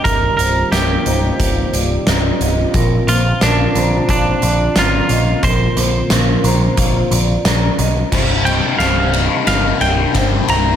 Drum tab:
CC |--------|--------|--------|x-------|
RD |--------|--------|--------|-xxxxxxx|
HH |xxxxxxxx|xxxxxxxx|xxxxxxxx|--------|
SD |--o---o-|--o---o-|--o---o-|o-o-o-o-|
BD |o---o---|o---o---|o---o---|o-----o-|